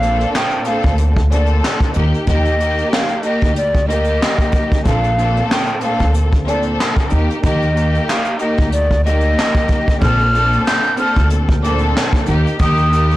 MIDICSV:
0, 0, Header, 1, 5, 480
1, 0, Start_track
1, 0, Key_signature, -2, "major"
1, 0, Tempo, 645161
1, 1693, Time_signature, 4, 2, 24, 8
1, 9797, End_track
2, 0, Start_track
2, 0, Title_t, "Flute"
2, 0, Program_c, 0, 73
2, 0, Note_on_c, 0, 77, 103
2, 222, Note_off_c, 0, 77, 0
2, 256, Note_on_c, 0, 79, 85
2, 471, Note_off_c, 0, 79, 0
2, 491, Note_on_c, 0, 77, 86
2, 708, Note_off_c, 0, 77, 0
2, 976, Note_on_c, 0, 74, 74
2, 1095, Note_off_c, 0, 74, 0
2, 1697, Note_on_c, 0, 75, 94
2, 2146, Note_off_c, 0, 75, 0
2, 2173, Note_on_c, 0, 77, 85
2, 2389, Note_off_c, 0, 77, 0
2, 2414, Note_on_c, 0, 75, 81
2, 2630, Note_off_c, 0, 75, 0
2, 2654, Note_on_c, 0, 74, 95
2, 2870, Note_off_c, 0, 74, 0
2, 2886, Note_on_c, 0, 75, 84
2, 3580, Note_off_c, 0, 75, 0
2, 3612, Note_on_c, 0, 77, 99
2, 4064, Note_off_c, 0, 77, 0
2, 4093, Note_on_c, 0, 79, 82
2, 4309, Note_off_c, 0, 79, 0
2, 4333, Note_on_c, 0, 77, 87
2, 4549, Note_off_c, 0, 77, 0
2, 4819, Note_on_c, 0, 74, 83
2, 4937, Note_off_c, 0, 74, 0
2, 5530, Note_on_c, 0, 75, 93
2, 5983, Note_off_c, 0, 75, 0
2, 6011, Note_on_c, 0, 77, 84
2, 6228, Note_off_c, 0, 77, 0
2, 6248, Note_on_c, 0, 75, 79
2, 6466, Note_off_c, 0, 75, 0
2, 6490, Note_on_c, 0, 74, 90
2, 6707, Note_off_c, 0, 74, 0
2, 6732, Note_on_c, 0, 75, 89
2, 7423, Note_off_c, 0, 75, 0
2, 7448, Note_on_c, 0, 89, 105
2, 7902, Note_off_c, 0, 89, 0
2, 7935, Note_on_c, 0, 91, 86
2, 8150, Note_off_c, 0, 91, 0
2, 8172, Note_on_c, 0, 89, 90
2, 8389, Note_off_c, 0, 89, 0
2, 8656, Note_on_c, 0, 86, 82
2, 8775, Note_off_c, 0, 86, 0
2, 9375, Note_on_c, 0, 87, 104
2, 9797, Note_off_c, 0, 87, 0
2, 9797, End_track
3, 0, Start_track
3, 0, Title_t, "String section"
3, 0, Program_c, 1, 48
3, 0, Note_on_c, 1, 46, 97
3, 2, Note_on_c, 1, 58, 89
3, 6, Note_on_c, 1, 60, 91
3, 9, Note_on_c, 1, 62, 90
3, 11, Note_on_c, 1, 69, 102
3, 452, Note_off_c, 1, 46, 0
3, 454, Note_off_c, 1, 58, 0
3, 456, Note_off_c, 1, 60, 0
3, 457, Note_off_c, 1, 62, 0
3, 458, Note_off_c, 1, 69, 0
3, 478, Note_on_c, 1, 46, 89
3, 481, Note_on_c, 1, 58, 89
3, 483, Note_on_c, 1, 60, 91
3, 486, Note_on_c, 1, 62, 79
3, 489, Note_on_c, 1, 69, 102
3, 827, Note_off_c, 1, 46, 0
3, 829, Note_off_c, 1, 58, 0
3, 830, Note_off_c, 1, 60, 0
3, 831, Note_off_c, 1, 62, 0
3, 833, Note_off_c, 1, 69, 0
3, 968, Note_on_c, 1, 46, 94
3, 972, Note_on_c, 1, 58, 85
3, 974, Note_on_c, 1, 60, 84
3, 977, Note_on_c, 1, 62, 84
3, 979, Note_on_c, 1, 69, 105
3, 1429, Note_off_c, 1, 58, 0
3, 1438, Note_on_c, 1, 58, 90
3, 1444, Note_on_c, 1, 63, 90
3, 1450, Note_on_c, 1, 67, 100
3, 1451, Note_off_c, 1, 46, 0
3, 1454, Note_off_c, 1, 60, 0
3, 1455, Note_off_c, 1, 62, 0
3, 1456, Note_off_c, 1, 69, 0
3, 1669, Note_off_c, 1, 58, 0
3, 1672, Note_off_c, 1, 63, 0
3, 1674, Note_off_c, 1, 67, 0
3, 1694, Note_on_c, 1, 58, 90
3, 1699, Note_on_c, 1, 63, 89
3, 1705, Note_on_c, 1, 67, 114
3, 1911, Note_off_c, 1, 58, 0
3, 1917, Note_off_c, 1, 63, 0
3, 1920, Note_on_c, 1, 58, 102
3, 1922, Note_off_c, 1, 67, 0
3, 1926, Note_on_c, 1, 63, 86
3, 1931, Note_on_c, 1, 67, 108
3, 2373, Note_off_c, 1, 58, 0
3, 2376, Note_off_c, 1, 63, 0
3, 2378, Note_off_c, 1, 67, 0
3, 2403, Note_on_c, 1, 58, 92
3, 2410, Note_on_c, 1, 63, 87
3, 2414, Note_on_c, 1, 67, 97
3, 2750, Note_off_c, 1, 58, 0
3, 2753, Note_off_c, 1, 63, 0
3, 2755, Note_off_c, 1, 67, 0
3, 2887, Note_on_c, 1, 58, 101
3, 2892, Note_on_c, 1, 63, 85
3, 2899, Note_on_c, 1, 67, 107
3, 3559, Note_off_c, 1, 58, 0
3, 3562, Note_off_c, 1, 63, 0
3, 3565, Note_off_c, 1, 67, 0
3, 3599, Note_on_c, 1, 46, 100
3, 3602, Note_on_c, 1, 58, 89
3, 3604, Note_on_c, 1, 60, 93
3, 3607, Note_on_c, 1, 62, 97
3, 3610, Note_on_c, 1, 69, 107
3, 3829, Note_off_c, 1, 46, 0
3, 3831, Note_off_c, 1, 58, 0
3, 3832, Note_off_c, 1, 60, 0
3, 3833, Note_off_c, 1, 62, 0
3, 3835, Note_off_c, 1, 69, 0
3, 3841, Note_on_c, 1, 46, 97
3, 3844, Note_on_c, 1, 58, 93
3, 3846, Note_on_c, 1, 60, 89
3, 3849, Note_on_c, 1, 62, 89
3, 3853, Note_on_c, 1, 69, 106
3, 4293, Note_off_c, 1, 46, 0
3, 4294, Note_off_c, 1, 58, 0
3, 4296, Note_off_c, 1, 60, 0
3, 4297, Note_off_c, 1, 62, 0
3, 4299, Note_off_c, 1, 69, 0
3, 4318, Note_on_c, 1, 46, 90
3, 4321, Note_on_c, 1, 58, 87
3, 4324, Note_on_c, 1, 60, 92
3, 4327, Note_on_c, 1, 62, 81
3, 4330, Note_on_c, 1, 69, 105
3, 4667, Note_off_c, 1, 46, 0
3, 4669, Note_off_c, 1, 58, 0
3, 4670, Note_off_c, 1, 60, 0
3, 4671, Note_off_c, 1, 62, 0
3, 4673, Note_off_c, 1, 69, 0
3, 4807, Note_on_c, 1, 46, 93
3, 4810, Note_on_c, 1, 58, 88
3, 4812, Note_on_c, 1, 60, 87
3, 4816, Note_on_c, 1, 62, 85
3, 4819, Note_on_c, 1, 69, 106
3, 5266, Note_off_c, 1, 58, 0
3, 5275, Note_on_c, 1, 58, 89
3, 5280, Note_on_c, 1, 63, 92
3, 5286, Note_on_c, 1, 67, 102
3, 5290, Note_off_c, 1, 46, 0
3, 5293, Note_off_c, 1, 60, 0
3, 5294, Note_off_c, 1, 62, 0
3, 5296, Note_off_c, 1, 69, 0
3, 5507, Note_off_c, 1, 58, 0
3, 5510, Note_off_c, 1, 63, 0
3, 5513, Note_off_c, 1, 67, 0
3, 5534, Note_on_c, 1, 58, 88
3, 5539, Note_on_c, 1, 63, 91
3, 5545, Note_on_c, 1, 67, 113
3, 5750, Note_off_c, 1, 58, 0
3, 5755, Note_off_c, 1, 63, 0
3, 5759, Note_on_c, 1, 58, 97
3, 5762, Note_off_c, 1, 67, 0
3, 5764, Note_on_c, 1, 63, 85
3, 5770, Note_on_c, 1, 67, 104
3, 6212, Note_off_c, 1, 58, 0
3, 6215, Note_off_c, 1, 63, 0
3, 6218, Note_off_c, 1, 67, 0
3, 6242, Note_on_c, 1, 58, 92
3, 6247, Note_on_c, 1, 63, 91
3, 6252, Note_on_c, 1, 67, 95
3, 6589, Note_off_c, 1, 58, 0
3, 6592, Note_off_c, 1, 63, 0
3, 6594, Note_off_c, 1, 67, 0
3, 6728, Note_on_c, 1, 58, 105
3, 6734, Note_on_c, 1, 63, 84
3, 6739, Note_on_c, 1, 67, 105
3, 7400, Note_off_c, 1, 58, 0
3, 7402, Note_off_c, 1, 63, 0
3, 7405, Note_off_c, 1, 67, 0
3, 7438, Note_on_c, 1, 46, 104
3, 7440, Note_on_c, 1, 58, 90
3, 7442, Note_on_c, 1, 60, 95
3, 7446, Note_on_c, 1, 62, 98
3, 7449, Note_on_c, 1, 69, 112
3, 7668, Note_off_c, 1, 46, 0
3, 7670, Note_off_c, 1, 58, 0
3, 7671, Note_off_c, 1, 60, 0
3, 7673, Note_off_c, 1, 62, 0
3, 7674, Note_off_c, 1, 69, 0
3, 7680, Note_on_c, 1, 46, 101
3, 7681, Note_on_c, 1, 58, 94
3, 7685, Note_on_c, 1, 60, 91
3, 7688, Note_on_c, 1, 62, 95
3, 7690, Note_on_c, 1, 69, 107
3, 8132, Note_off_c, 1, 46, 0
3, 8133, Note_off_c, 1, 58, 0
3, 8135, Note_off_c, 1, 60, 0
3, 8137, Note_off_c, 1, 62, 0
3, 8138, Note_off_c, 1, 69, 0
3, 8156, Note_on_c, 1, 46, 90
3, 8159, Note_on_c, 1, 58, 86
3, 8162, Note_on_c, 1, 60, 93
3, 8165, Note_on_c, 1, 62, 82
3, 8168, Note_on_c, 1, 69, 107
3, 8506, Note_off_c, 1, 46, 0
3, 8508, Note_off_c, 1, 58, 0
3, 8509, Note_off_c, 1, 60, 0
3, 8511, Note_off_c, 1, 62, 0
3, 8512, Note_off_c, 1, 69, 0
3, 8649, Note_on_c, 1, 46, 97
3, 8652, Note_on_c, 1, 58, 88
3, 8655, Note_on_c, 1, 60, 89
3, 8658, Note_on_c, 1, 62, 92
3, 8660, Note_on_c, 1, 69, 107
3, 9109, Note_off_c, 1, 58, 0
3, 9118, Note_on_c, 1, 58, 92
3, 9124, Note_on_c, 1, 63, 91
3, 9130, Note_on_c, 1, 67, 104
3, 9131, Note_off_c, 1, 46, 0
3, 9134, Note_off_c, 1, 60, 0
3, 9136, Note_off_c, 1, 62, 0
3, 9137, Note_off_c, 1, 69, 0
3, 9349, Note_off_c, 1, 58, 0
3, 9352, Note_off_c, 1, 63, 0
3, 9354, Note_off_c, 1, 67, 0
3, 9374, Note_on_c, 1, 58, 92
3, 9381, Note_on_c, 1, 63, 94
3, 9386, Note_on_c, 1, 67, 113
3, 9593, Note_off_c, 1, 58, 0
3, 9600, Note_off_c, 1, 63, 0
3, 9602, Note_on_c, 1, 58, 102
3, 9603, Note_off_c, 1, 67, 0
3, 9608, Note_on_c, 1, 63, 85
3, 9614, Note_on_c, 1, 67, 110
3, 9797, Note_off_c, 1, 58, 0
3, 9797, Note_off_c, 1, 63, 0
3, 9797, Note_off_c, 1, 67, 0
3, 9797, End_track
4, 0, Start_track
4, 0, Title_t, "Upright bass"
4, 0, Program_c, 2, 32
4, 0, Note_on_c, 2, 34, 99
4, 173, Note_off_c, 2, 34, 0
4, 629, Note_on_c, 2, 38, 92
4, 1185, Note_off_c, 2, 38, 0
4, 1459, Note_on_c, 2, 39, 96
4, 1567, Note_off_c, 2, 39, 0
4, 1695, Note_on_c, 2, 39, 103
4, 2092, Note_off_c, 2, 39, 0
4, 2550, Note_on_c, 2, 38, 86
4, 3105, Note_off_c, 2, 38, 0
4, 3616, Note_on_c, 2, 34, 102
4, 4013, Note_off_c, 2, 34, 0
4, 4470, Note_on_c, 2, 38, 90
4, 5025, Note_off_c, 2, 38, 0
4, 5298, Note_on_c, 2, 39, 98
4, 5407, Note_off_c, 2, 39, 0
4, 5536, Note_on_c, 2, 39, 104
4, 5932, Note_off_c, 2, 39, 0
4, 6390, Note_on_c, 2, 38, 83
4, 6945, Note_off_c, 2, 38, 0
4, 7457, Note_on_c, 2, 34, 106
4, 7853, Note_off_c, 2, 34, 0
4, 8310, Note_on_c, 2, 38, 96
4, 8865, Note_off_c, 2, 38, 0
4, 9139, Note_on_c, 2, 39, 97
4, 9247, Note_off_c, 2, 39, 0
4, 9376, Note_on_c, 2, 39, 107
4, 9773, Note_off_c, 2, 39, 0
4, 9797, End_track
5, 0, Start_track
5, 0, Title_t, "Drums"
5, 19, Note_on_c, 9, 42, 70
5, 93, Note_off_c, 9, 42, 0
5, 152, Note_on_c, 9, 42, 49
5, 227, Note_off_c, 9, 42, 0
5, 261, Note_on_c, 9, 38, 125
5, 266, Note_on_c, 9, 39, 100
5, 335, Note_off_c, 9, 38, 0
5, 341, Note_off_c, 9, 39, 0
5, 374, Note_on_c, 9, 42, 56
5, 448, Note_off_c, 9, 42, 0
5, 481, Note_on_c, 9, 42, 72
5, 556, Note_off_c, 9, 42, 0
5, 618, Note_on_c, 9, 42, 49
5, 627, Note_on_c, 9, 36, 84
5, 692, Note_off_c, 9, 42, 0
5, 701, Note_off_c, 9, 36, 0
5, 728, Note_on_c, 9, 42, 105
5, 803, Note_off_c, 9, 42, 0
5, 864, Note_on_c, 9, 42, 47
5, 867, Note_on_c, 9, 36, 91
5, 938, Note_off_c, 9, 42, 0
5, 941, Note_off_c, 9, 36, 0
5, 981, Note_on_c, 9, 42, 79
5, 1055, Note_off_c, 9, 42, 0
5, 1088, Note_on_c, 9, 42, 57
5, 1163, Note_off_c, 9, 42, 0
5, 1222, Note_on_c, 9, 38, 119
5, 1228, Note_on_c, 9, 39, 96
5, 1297, Note_off_c, 9, 38, 0
5, 1302, Note_off_c, 9, 39, 0
5, 1341, Note_on_c, 9, 42, 51
5, 1342, Note_on_c, 9, 36, 95
5, 1415, Note_off_c, 9, 42, 0
5, 1417, Note_off_c, 9, 36, 0
5, 1441, Note_on_c, 9, 42, 76
5, 1515, Note_off_c, 9, 42, 0
5, 1593, Note_on_c, 9, 42, 49
5, 1668, Note_off_c, 9, 42, 0
5, 1688, Note_on_c, 9, 42, 94
5, 1693, Note_on_c, 9, 36, 114
5, 1763, Note_off_c, 9, 42, 0
5, 1767, Note_off_c, 9, 36, 0
5, 1826, Note_on_c, 9, 42, 50
5, 1900, Note_off_c, 9, 42, 0
5, 1937, Note_on_c, 9, 42, 68
5, 2011, Note_off_c, 9, 42, 0
5, 2072, Note_on_c, 9, 42, 51
5, 2146, Note_off_c, 9, 42, 0
5, 2180, Note_on_c, 9, 38, 117
5, 2186, Note_on_c, 9, 39, 95
5, 2255, Note_off_c, 9, 38, 0
5, 2260, Note_off_c, 9, 39, 0
5, 2294, Note_on_c, 9, 42, 58
5, 2368, Note_off_c, 9, 42, 0
5, 2401, Note_on_c, 9, 42, 73
5, 2476, Note_off_c, 9, 42, 0
5, 2538, Note_on_c, 9, 42, 47
5, 2546, Note_on_c, 9, 36, 83
5, 2613, Note_off_c, 9, 42, 0
5, 2621, Note_off_c, 9, 36, 0
5, 2649, Note_on_c, 9, 42, 101
5, 2723, Note_off_c, 9, 42, 0
5, 2785, Note_on_c, 9, 42, 46
5, 2787, Note_on_c, 9, 36, 87
5, 2859, Note_off_c, 9, 42, 0
5, 2861, Note_off_c, 9, 36, 0
5, 2902, Note_on_c, 9, 42, 80
5, 2977, Note_off_c, 9, 42, 0
5, 3009, Note_on_c, 9, 42, 59
5, 3084, Note_off_c, 9, 42, 0
5, 3144, Note_on_c, 9, 38, 119
5, 3149, Note_on_c, 9, 39, 97
5, 3218, Note_off_c, 9, 38, 0
5, 3224, Note_off_c, 9, 39, 0
5, 3263, Note_on_c, 9, 36, 99
5, 3263, Note_on_c, 9, 42, 51
5, 3337, Note_off_c, 9, 36, 0
5, 3337, Note_off_c, 9, 42, 0
5, 3362, Note_on_c, 9, 42, 75
5, 3371, Note_on_c, 9, 36, 95
5, 3437, Note_off_c, 9, 42, 0
5, 3445, Note_off_c, 9, 36, 0
5, 3510, Note_on_c, 9, 36, 102
5, 3515, Note_on_c, 9, 42, 51
5, 3584, Note_off_c, 9, 36, 0
5, 3589, Note_off_c, 9, 42, 0
5, 3610, Note_on_c, 9, 42, 99
5, 3613, Note_on_c, 9, 36, 117
5, 3684, Note_off_c, 9, 42, 0
5, 3687, Note_off_c, 9, 36, 0
5, 3748, Note_on_c, 9, 42, 49
5, 3822, Note_off_c, 9, 42, 0
5, 3859, Note_on_c, 9, 42, 72
5, 3933, Note_off_c, 9, 42, 0
5, 3993, Note_on_c, 9, 42, 51
5, 4067, Note_off_c, 9, 42, 0
5, 4101, Note_on_c, 9, 38, 122
5, 4107, Note_on_c, 9, 39, 96
5, 4175, Note_off_c, 9, 38, 0
5, 4181, Note_off_c, 9, 39, 0
5, 4214, Note_on_c, 9, 42, 59
5, 4288, Note_off_c, 9, 42, 0
5, 4322, Note_on_c, 9, 42, 73
5, 4396, Note_off_c, 9, 42, 0
5, 4460, Note_on_c, 9, 42, 48
5, 4467, Note_on_c, 9, 36, 85
5, 4534, Note_off_c, 9, 42, 0
5, 4541, Note_off_c, 9, 36, 0
5, 4569, Note_on_c, 9, 42, 104
5, 4643, Note_off_c, 9, 42, 0
5, 4704, Note_on_c, 9, 42, 46
5, 4707, Note_on_c, 9, 36, 89
5, 4778, Note_off_c, 9, 42, 0
5, 4781, Note_off_c, 9, 36, 0
5, 4821, Note_on_c, 9, 42, 80
5, 4896, Note_off_c, 9, 42, 0
5, 4929, Note_on_c, 9, 42, 56
5, 5003, Note_off_c, 9, 42, 0
5, 5062, Note_on_c, 9, 38, 119
5, 5068, Note_on_c, 9, 39, 99
5, 5137, Note_off_c, 9, 38, 0
5, 5142, Note_off_c, 9, 39, 0
5, 5182, Note_on_c, 9, 36, 98
5, 5182, Note_on_c, 9, 42, 49
5, 5256, Note_off_c, 9, 42, 0
5, 5257, Note_off_c, 9, 36, 0
5, 5282, Note_on_c, 9, 42, 72
5, 5356, Note_off_c, 9, 42, 0
5, 5435, Note_on_c, 9, 42, 51
5, 5509, Note_off_c, 9, 42, 0
5, 5529, Note_on_c, 9, 42, 96
5, 5533, Note_on_c, 9, 36, 116
5, 5604, Note_off_c, 9, 42, 0
5, 5607, Note_off_c, 9, 36, 0
5, 5667, Note_on_c, 9, 42, 51
5, 5742, Note_off_c, 9, 42, 0
5, 5779, Note_on_c, 9, 42, 72
5, 5854, Note_off_c, 9, 42, 0
5, 5913, Note_on_c, 9, 42, 50
5, 5988, Note_off_c, 9, 42, 0
5, 6022, Note_on_c, 9, 38, 117
5, 6027, Note_on_c, 9, 39, 97
5, 6096, Note_off_c, 9, 38, 0
5, 6102, Note_off_c, 9, 39, 0
5, 6135, Note_on_c, 9, 42, 60
5, 6210, Note_off_c, 9, 42, 0
5, 6243, Note_on_c, 9, 42, 73
5, 6317, Note_off_c, 9, 42, 0
5, 6380, Note_on_c, 9, 42, 46
5, 6387, Note_on_c, 9, 36, 85
5, 6454, Note_off_c, 9, 42, 0
5, 6461, Note_off_c, 9, 36, 0
5, 6490, Note_on_c, 9, 42, 103
5, 6564, Note_off_c, 9, 42, 0
5, 6625, Note_on_c, 9, 42, 47
5, 6627, Note_on_c, 9, 36, 89
5, 6699, Note_off_c, 9, 42, 0
5, 6701, Note_off_c, 9, 36, 0
5, 6742, Note_on_c, 9, 42, 81
5, 6817, Note_off_c, 9, 42, 0
5, 6850, Note_on_c, 9, 42, 55
5, 6925, Note_off_c, 9, 42, 0
5, 6985, Note_on_c, 9, 38, 120
5, 6990, Note_on_c, 9, 39, 95
5, 7059, Note_off_c, 9, 38, 0
5, 7065, Note_off_c, 9, 39, 0
5, 7103, Note_on_c, 9, 36, 99
5, 7104, Note_on_c, 9, 42, 51
5, 7178, Note_off_c, 9, 36, 0
5, 7178, Note_off_c, 9, 42, 0
5, 7202, Note_on_c, 9, 42, 74
5, 7211, Note_on_c, 9, 36, 94
5, 7277, Note_off_c, 9, 42, 0
5, 7285, Note_off_c, 9, 36, 0
5, 7350, Note_on_c, 9, 36, 100
5, 7355, Note_on_c, 9, 42, 49
5, 7424, Note_off_c, 9, 36, 0
5, 7430, Note_off_c, 9, 42, 0
5, 7450, Note_on_c, 9, 42, 99
5, 7453, Note_on_c, 9, 36, 124
5, 7524, Note_off_c, 9, 42, 0
5, 7528, Note_off_c, 9, 36, 0
5, 7587, Note_on_c, 9, 42, 52
5, 7662, Note_off_c, 9, 42, 0
5, 7699, Note_on_c, 9, 42, 73
5, 7773, Note_off_c, 9, 42, 0
5, 7832, Note_on_c, 9, 42, 53
5, 7907, Note_off_c, 9, 42, 0
5, 7942, Note_on_c, 9, 38, 127
5, 7947, Note_on_c, 9, 39, 101
5, 8016, Note_off_c, 9, 38, 0
5, 8022, Note_off_c, 9, 39, 0
5, 8054, Note_on_c, 9, 42, 59
5, 8129, Note_off_c, 9, 42, 0
5, 8162, Note_on_c, 9, 42, 76
5, 8236, Note_off_c, 9, 42, 0
5, 8300, Note_on_c, 9, 42, 50
5, 8307, Note_on_c, 9, 36, 92
5, 8374, Note_off_c, 9, 42, 0
5, 8381, Note_off_c, 9, 36, 0
5, 8409, Note_on_c, 9, 42, 107
5, 8483, Note_off_c, 9, 42, 0
5, 8545, Note_on_c, 9, 42, 48
5, 8547, Note_on_c, 9, 36, 91
5, 8619, Note_off_c, 9, 42, 0
5, 8622, Note_off_c, 9, 36, 0
5, 8662, Note_on_c, 9, 42, 83
5, 8736, Note_off_c, 9, 42, 0
5, 8770, Note_on_c, 9, 42, 60
5, 8844, Note_off_c, 9, 42, 0
5, 8904, Note_on_c, 9, 38, 121
5, 8909, Note_on_c, 9, 39, 95
5, 8978, Note_off_c, 9, 38, 0
5, 8984, Note_off_c, 9, 39, 0
5, 9023, Note_on_c, 9, 36, 101
5, 9023, Note_on_c, 9, 42, 52
5, 9097, Note_off_c, 9, 36, 0
5, 9097, Note_off_c, 9, 42, 0
5, 9122, Note_on_c, 9, 42, 76
5, 9196, Note_off_c, 9, 42, 0
5, 9275, Note_on_c, 9, 42, 52
5, 9349, Note_off_c, 9, 42, 0
5, 9369, Note_on_c, 9, 42, 96
5, 9373, Note_on_c, 9, 36, 121
5, 9444, Note_off_c, 9, 42, 0
5, 9447, Note_off_c, 9, 36, 0
5, 9507, Note_on_c, 9, 42, 51
5, 9581, Note_off_c, 9, 42, 0
5, 9617, Note_on_c, 9, 42, 73
5, 9692, Note_off_c, 9, 42, 0
5, 9752, Note_on_c, 9, 42, 50
5, 9797, Note_off_c, 9, 42, 0
5, 9797, End_track
0, 0, End_of_file